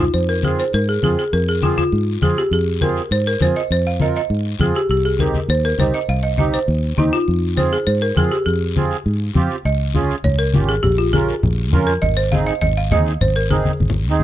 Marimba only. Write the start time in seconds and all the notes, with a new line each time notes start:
0.00 F4
0.14 C5
0.29 A#4
0.45 G#4
0.60 C5
0.74 A#4
0.89 G#4
1.04 G#4
1.19 G#4
1.33 A#4
1.49 G#4
1.63 F4
1.78 F4
2.23 G#4
2.38 G4
2.53 G#4
2.82 A#4
3.12 C5
3.27 A#4
3.42 C5
3.56 D#5
3.72 C5
3.87 F5
4.02 D#5
4.17 D#5
4.61 G#4
4.76 G4
4.91 G4
5.05 G#4
5.20 A#4
5.50 C5
5.65 A#4
5.80 C5
5.94 D#5
6.09 F5
6.23 D#5
6.38 D#5
6.54 C5
6.98 D#4
7.13 F4
7.57 C5
7.73 G#4
7.87 C5
8.02 A#4
8.17 G#4
8.32 G4
8.46 G#4
9.66 D#5
10.24 C#5
10.39 A#4
10.69 G#4
10.83 G4
10.98 F4
11.13 G#4
11.87 A#4
12.02 D#5
12.17 C5
12.32 F5
12.47 D#5
12.61 D#5
12.77 F5
12.92 D#5
13.21 C5
13.36 A#4
13.51 G#4